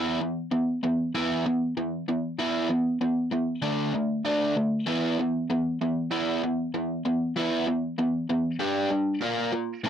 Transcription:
0.00 0.19 E3 medium
0.00 0.20 B3 medium
0.00 0.20 E4 medium
0.21 0.50 E3 medium
0.21 0.50 B3 medium
0.51 0.80 E3 medium
0.51 0.80 B3 medium
0.83 1.12 E3 medium
0.83 1.12 B3 medium
1.15 1.44 E3 medium
1.15 1.44 B3 medium
1.15 1.45 E4 medium
1.46 1.74 E3 medium
1.46 1.74 B3 medium
1.77 2.05 E3 medium
1.77 2.05 B3 medium
2.08 2.36 E3 medium
2.08 2.37 B3 medium
2.39 2.68 E3 medium
2.39 2.69 B3 medium
2.39 2.69 E4 medium
2.69 2.98 E3 medium
2.69 2.98 B3 medium
3.01 3.29 E3 medium
3.01 3.29 B3 medium
3.31 3.60 E3 medium
3.31 3.60 B3 medium
3.62 3.92 D3 medium
3.62 3.93 A3 medium
3.62 3.92 D4 medium
3.94 4.22 D3 medium
3.94 4.23 A3 medium
4.25 4.55 D3 medium
4.25 4.55 A3 medium
4.25 4.55 D4 medium
4.56 4.85 D3 soft
4.56 4.85 A3 medium
4.86 5.16 E3 medium
4.86 5.17 B3 medium
4.86 5.17 E4 medium
5.18 5.47 E3 medium
5.18 5.47 B3 medium
5.50 5.78 E3 medium
5.50 5.78 B3 medium
5.82 6.10 E3 medium
5.82 6.10 B3 medium
6.11 6.41 E3 medium
6.11 6.41 B3 medium
6.11 6.41 E4 medium
6.44 6.72 E3 medium
6.44 6.72 B3 medium
6.74 7.02 E3 medium
6.74 7.03 B3 medium
7.05 7.34 E3 medium
7.05 7.33 B3 medium
7.36 7.66 E3 medium
7.36 7.66 B3 medium
7.36 7.66 E4 medium
7.67 7.96 E3 medium
7.67 7.96 B3 medium
7.98 8.27 E3 medium
7.98 8.27 B3 medium
8.29 8.58 E3 medium
8.29 8.58 B3 medium
8.59 8.89 G3 medium
8.59 8.90 D4 medium
8.59 8.90 G4 medium
8.91 9.19 G3 medium
8.91 9.20 D4 medium
9.22 9.52 A#3 medium
9.22 9.52 F4 medium
9.22 9.52 A#4 medium
9.53 9.82 A#3 medium
9.53 9.82 F4 medium
9.84 9.89 A2 medium
9.84 9.89 E3 loud
9.84 9.89 A3 medium
9.84 9.89 C#4 medium
9.84 9.89 E4 loud

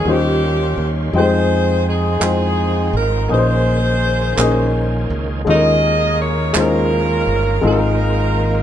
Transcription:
0.04 0.74 D#2 medium
0.04 1.13 D#3 medium
0.04 1.11 D#3 medium
0.04 0.12 F3 soft
0.04 0.90 G3 medium
0.04 1.14 C#4 medium
0.04 0.90 C#4 medium
0.04 0.90 D#4 medium
0.04 1.13 F4 medium
0.04 1.13 C5 medium
0.08 1.14 G3 medium
0.08 1.12 A#3 medium
0.08 1.11 C#4 medium
0.08 0.91 F4 medium
0.08 0.89 G4 medium
0.08 0.91 C5 medium
0.77 1.11 D#2 medium
1.13 2.18 F2 medium
1.13 3.27 F3 medium
1.13 1.20 G3 medium
1.13 1.21 G3 soft
1.13 3.27 C4 medium
1.13 1.98 D#4 medium
1.13 3.27 D#4 medium
1.13 1.98 F4 medium
1.13 1.88 G#4 medium
1.13 1.99 C5 medium
1.13 1.84 C5 medium
1.13 3.27 G5 medium
1.13 1.98 G5 medium
1.17 2.01 G#3 medium
1.17 1.88 D#4 medium
1.22 3.30 G#3 medium
1.89 2.91 C4 medium
1.89 2.92 D#4 medium
1.89 2.96 G#4 loud
2.20 2.90 F2 medium
2.20 3.05 G#3 medium
2.20 3.05 D#4 medium
2.20 3.06 F4 medium
2.20 3.06 C5 medium
2.20 3.06 G5 medium
2.20 clap medium
2.93 3.27 G#1 loud
2.93 3.29 A#4 medium
3.28 4.34 A#1 loud
3.28 4.35 A#2 medium
3.28 5.42 D#3 medium
3.28 5.41 A#3 medium
3.28 4.13 A#3 medium
3.28 5.42 C#4 medium
3.28 4.14 C#4 medium
3.28 4.14 D#4 medium
3.28 5.42 G#4 medium
3.28 4.14 G#4 medium
3.28 5.42 C5 medium
3.32 5.09 D#4 medium
3.32 5.08 G#4 medium
3.32 3.37 B4 medium
3.32 5.08 C5 loud
3.39 4.18 C5 medium
4.37 5.06 A#1 medium
4.37 5.22 A#3 medium
4.37 5.22 C#4 medium
4.37 5.23 D#4 medium
4.37 5.23 G#4 medium
4.37 5.23 D#5 medium
4.37 clap medium
5.10 5.44 C#2 medium
5.45 6.51 D#2 loud
5.45 7.59 D#3 medium
5.45 6.51 D#3 medium
5.45 5.53 G3 soft
5.45 6.30 G#3 medium
5.45 7.59 A#3 medium
5.45 6.30 C#4 medium
5.45 7.60 C#4 medium
5.45 6.31 D#4 medium
5.45 7.60 F4 medium
5.45 6.31 F4 medium
5.45 5.54 A4 medium
5.49 7.63 G#3 medium
5.49 6.52 G#4 medium
5.49 6.52 A#4 medium
5.49 6.16 D#5 loud
5.55 6.35 A#4 medium
6.21 6.56 C#5 loud
6.53 7.24 D#2 medium
6.53 7.38 G#3 medium
6.53 7.39 C#4 medium
6.53 7.39 D#4 medium
6.53 7.40 F4 medium
6.53 7.40 C5 medium
6.53 clap medium
6.57 7.61 C#4 medium
6.57 7.61 F4 medium
6.57 7.65 A#4 loud
7.27 7.61 G1 medium
7.61 8.63 G#1 loud
7.61 8.63 G#2 medium
7.61 8.63 D#3 medium
7.61 8.47 G#3 medium
7.61 8.63 G#3 medium
7.61 8.63 A#3 medium
7.61 8.47 C4 medium
7.61 8.63 C4 medium
7.61 8.47 D#4 medium
7.61 8.48 F4 medium
7.61 8.63 F4 medium
7.61 7.70 A4 medium
7.66 8.63 D#4 medium
7.66 8.63 F4 medium
7.66 8.63 A#4 medium
7.71 8.51 A#4 medium

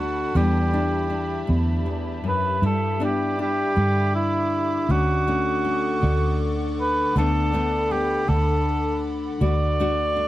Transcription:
0.00 0.23 D2 medium
0.00 0.35 D2 medium
0.00 0.35 D3 medium
0.00 0.31 A3 medium
0.00 0.36 B3 medium
0.00 0.37 D4 medium
0.00 0.38 F#4 medium
0.00 0.32 A4 medium
0.00 0.32 F#5 medium
0.00 2.59 A5 medium
0.00 2.59 B5 medium
0.35 1.47 E2 medium
0.35 1.36 E2 medium
0.35 2.58 E3 medium
0.35 2.27 G3 medium
0.35 0.73 D4 medium
0.35 4.85 G4 medium
0.35 1.49 G4 medium
0.35 4.86 E5 medium
0.73 1.09 D4 medium
1.10 2.66 D4 soft
1.47 1.86 D2 medium
1.47 2.50 E2 medium
1.86 2.23 E2 medium
2.24 2.62 F#2 medium
2.28 2.62 B4 medium
2.62 3.63 G2 medium
2.62 4.85 G2 medium
2.62 3.00 E4 medium
2.62 3.00 A4 medium
2.62 4.87 B5 medium
2.62 10.28 D6 medium
3.00 4.84 B3 medium
3.00 3.39 D4 medium
3.00 4.85 E4 medium
3.04 3.38 G4 medium
3.39 4.90 D4 medium
3.39 4.11 G4 medium
3.76 4.77 G2 medium
3.76 6.01 D3 medium
4.15 4.93 E4 medium
4.89 5.89 D2 medium
4.89 7.15 D2 medium
4.89 5.27 C#4 medium
4.89 6.52 F#4 medium
4.89 10.28 A4 medium
4.89 10.28 F#5 medium
4.89 7.14 C#6 medium
5.27 7.17 A3 medium
5.27 5.63 C#4 medium
5.65 7.11 C#4 medium
6.02 7.03 D2 medium
6.02 7.16 D3 medium
6.80 7.14 B4 medium
7.16 8.15 D2 medium
7.16 9.40 D2 medium
7.16 8.27 D3 medium
7.16 7.53 A3 medium
7.16 7.53 B3 medium
7.16 7.54 D4 medium
7.16 7.93 A4 medium
7.16 9.39 B5 medium
7.53 9.37 A3 medium
7.53 7.90 B3 medium
7.53 9.41 D4 medium
7.91 9.37 B3 medium
7.91 8.30 G4 medium
8.27 9.28 D2 medium
8.27 10.28 D3 medium
8.27 9.04 A4 medium
9.41 10.28 D2 medium
9.41 9.79 F#4 medium
9.41 10.28 D5 loud
9.41 10.28 C#6 medium
9.80 10.28 A3 medium
9.80 10.15 D4 medium
9.80 10.28 F#4 medium
10.16 10.28 D4 medium

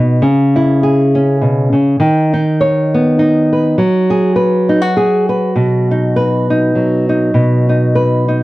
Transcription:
0.00 0.21 B2 medium
0.00 0.19 D#4 medium
0.00 0.20 F#4 medium
0.00 0.19 B4 medium
0.22 1.71 C#3 medium
0.56 1.97 E4 medium
0.83 2.01 G#4 medium
1.15 1.97 C#4 medium
1.41 1.74 B2 medium
1.72 1.99 C#3 medium
2.00 3.75 D#3 medium
2.34 3.18 D#4 medium
2.61 3.52 C#5 medium
2.94 3.79 B3 medium
3.19 3.78 D#4 medium
3.52 3.75 B4 medium
3.78 6.74 F#3 medium
4.10 4.35 G#4 medium
4.36 4.96 B4 medium
4.69 4.81 D#4 medium
4.81 5.55 F#4 medium
4.96 5.29 G#4 medium
5.29 5.53 B4 medium
5.56 7.34 B2 medium
5.91 6.50 D#4 medium
6.16 7.95 B4 medium
6.50 7.09 D#4 medium
6.75 8.43 F#3 medium
7.09 7.69 D#4 medium
7.34 8.43 B2 medium
7.69 8.28 D#4 medium
7.95 8.43 B4 medium
8.28 8.43 D#4 medium

